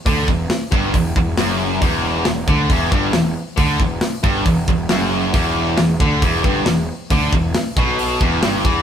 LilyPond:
<<
  \new Staff \with { instrumentName = "Distorted electric guitar" } { \clef bass \time 4/4 \key e \minor \tempo 4 = 136 d8 e,8 r8 g,8 e,8 e,8 fis,4 | e,4 e,8 d8 e,8 g,8 e,8 r8 | d8 e,8 r8 g,8 e,8 e,8 fis,4 | e,4 e,8 d8 e,8 g,8 e,8 r8 |
d8 e,8 r8 b,4 e,8 g,8 e8 | }
  \new Staff \with { instrumentName = "Distorted electric guitar" } { \clef bass \time 4/4 \key e \minor d8 e,8 r8 g,8 e,8 e,8 fis,4 | e,4 e,8 d8 e,8 g,8 e,8 r8 | d8 e,8 r8 g,8 e,8 e,8 fis,4 | e,4 e,8 d8 e,8 g,8 e,8 r8 |
d8 e,8 r8 b,4 e,8 g,8 e8 | }
  \new Staff \with { instrumentName = "Picked electric bass" } { \clef bass \time 4/4 \key e \minor d,8 e,,8 r8 g,,8 e,,8 e,,8 fis,,4 | e,,4 e,,8 d,8 e,,8 g,,8 e,,8 r8 | d,8 e,,8 r8 g,,8 e,,8 e,,8 fis,,4 | e,,4 e,,8 d,8 e,,8 g,,8 e,,8 r8 |
d,8 e,,8 r8 b,,4 e,,8 g,,8 e,8 | }
  \new DrumStaff \with { instrumentName = "Drums" } \drummode { \time 4/4 <hho bd>8 bd8 <hho sn>8 bd8 <hho bd>8 bd8 <hho sn>4 | <hho bd>4 <hho sn>8 bd8 <hho bd>8 bd8 <hho sn>4 | <hho bd>8 bd8 <hho sn>8 bd8 <hho bd>8 bd8 <hho sn>4 | <hho bd>4 <hho sn>8 bd8 <hho bd>8 bd8 <hho sn>4 |
<hho bd>8 bd8 <hho sn>8 bd8 hho8 bd8 <hho sn>8 bd8 | }
>>